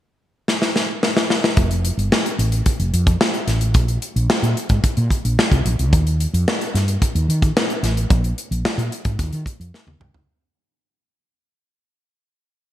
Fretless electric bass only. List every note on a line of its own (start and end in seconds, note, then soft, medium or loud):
1.57 1.90 F1 medium
1.97 2.08 G1 medium
2.39 2.60 A1 medium
2.79 2.90 F1 medium
2.93 3.15 F2 medium
3.47 3.75 A1 medium
3.75 3.97 A#1 medium
4.16 4.27 A#1 medium
4.42 4.53 A#2 medium
4.70 4.81 G#2 medium
4.97 5.08 A#2 medium
5.25 5.35 A#1 medium
5.51 5.62 C2 medium
5.65 5.76 A#1 medium
5.79 5.93 C2 medium
5.93 6.25 D#2 medium
6.34 6.44 F2 medium
6.74 6.96 G2 medium
7.15 7.26 D#2 medium
7.28 7.50 D#3 medium
7.83 8.04 A1 medium
8.11 8.32 A#1 medium
8.51 8.62 A#1 medium
8.78 8.89 A#2 medium
9.05 9.16 G#2 medium
9.19 9.30 D#2 medium
9.33 9.43 D#3 medium
9.60 9.71 F2 medium
9.87 9.98 D#2 medium
10.00 10.11 C2 medium
10.14 10.25 C#2 medium